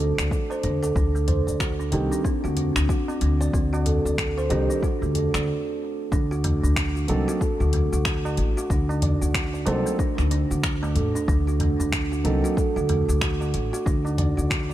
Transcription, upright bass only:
Already playing: D2
0.18 D2
0.64 D2
0.96 D2
1.48 D2
1.93 C2
2.44 D2
2.76 D2
3.21 D2
3.54 D2
4.05 D2
4.51 C2
5.02 D2
5.34 D2
6.12 D2
6.63 D2
7.09 C2
7.60 D2
7.92 D2
8.38 A1
8.70 D2
9.21 D2
9.67 C2
10.19 D2
10.51 D2
10.96 A1
11.28 D2
11.80 D2
12.25 C2
12.76 D2
13.09 D2
13.54 A1
13.86 D2
14.38 D2

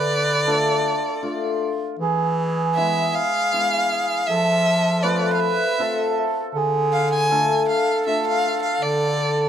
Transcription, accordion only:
Already playing: B4
0.46 A4
1.24 F4
2.01 G#4
4.29 A4
5.03 B4
5.80 A4
6.56 G#4
7.30 A4

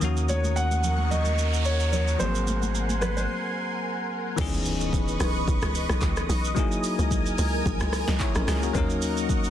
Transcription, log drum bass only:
4.38 C#2
5.20 B1
5.48 B1
5.62 C#2
5.90 B1
6.02 C#2
6.29 B1
6.99 C#2
7.38 C#2
7.66 A#1
7.81 C#2
8.08 C#2
8.35 A#1
8.47 C#2
8.75 D#2

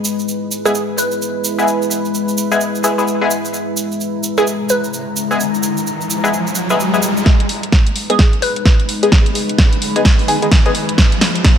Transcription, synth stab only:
0.66 G#3 B3 E4 G#4
1.58 G#3 B3 E4 G#4
2.52 G#3 B3 E4 G#4
2.84 G#3 B3 E4 G#4
2.98 G#3 B3 E4 G#4
3.21 G#3 B3 E4 G#4
4.38 G#3 B3 E4 G#4
5.31 G#3 B3 E4 G#4
6.24 G#3 B3 E4 G#4
6.70 G#3 B3 E4 G#4
6.94 G#3 B3 E4 G#4
8.10 G#3 B3 D#4 G#4
9.03 G#3 B3 D#4 G#4
9.96 G#3 B3 D#4 G#4
10.28 G#3 B3 D#4 G#4
10.42 G#3 B3 D#4 G#4
10.66 G#3 B3 D#4 G#4

